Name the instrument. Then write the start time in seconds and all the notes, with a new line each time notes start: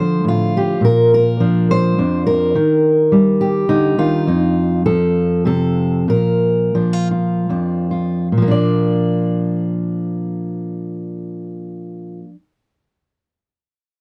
steel-string acoustic guitar
Already playing: D3 F3 F4 A4 C5
0.24 A2
0.28 F4
0.57 G4
0.81 A#2 A#4
1.14 A#4
1.40 F3 D4
1.71 C5
1.98 F2 D4
2.27 A#4
2.55 D#3
3.12 G3
3.41 G4
3.69 D3 D#4
3.98 D#3 F4
4.27 F2 D#4
4.86 F3 A4
5.45 C3 A4
6.08 A#2 A#4
6.75 F3 D4
6.93 F4
7.11 F4
7.49 F2 D4
7.91 F4
8.32 A#2
8.38 F3
8.42 A#3
8.48 D4 D5